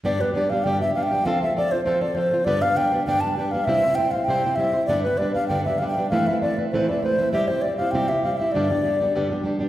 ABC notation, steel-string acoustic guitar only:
X:1
M:4/4
L:1/8
Q:"Swing" 1/4=198
K:Gmix
V:1 name="Steel-string acoustic guitar"
[G,,D,G,B,DG] [G,B,DG] [G,B,DG] [G,B,DG] [G,,D,G,B,DG] [G,B,DG] [G,B,DG] [G,B,DG] | [F,CFA] [CFA] [F,CFA] [CFA] [F,CFA] [CFA] [F,CFA] [CFA] | [G,,D,G,B,DB] [G,B,DB] [G,B,DB] [G,B,DB] [G,,D,G,B,DB] [G,B,DB] [G,B,DB] [G,B,DB] | [C,G,CEc] [CEc] [G,CEc] [CEc] [C,G,CEc] [CEc] [G,CEc] [CEc] |
[G,,D,G,B,DB] [G,B,DB] [G,B,DB] [G,B,DB] [G,,D,G,B,DB] [G,B,DB] [G,B,DB] [G,B,DB] | [A,,E,A,CEB] [A,CEB] [A,CEB] [A,CEB] [A,,E,A,CEB] [A,CEB] [A,CEB] [A,CEB] | [C,G,CEG] [CEG] [G,CEG] [CEG] [C,G,CEG] [CEG] [G,CEG] [CEG] | [G,,D,G,B,DG] [G,B,DG] [G,B,DG] [G,B,DG] [G,,D,G,B,DG] [G,B,DG] [G,B,DG] [G,B,DG] |]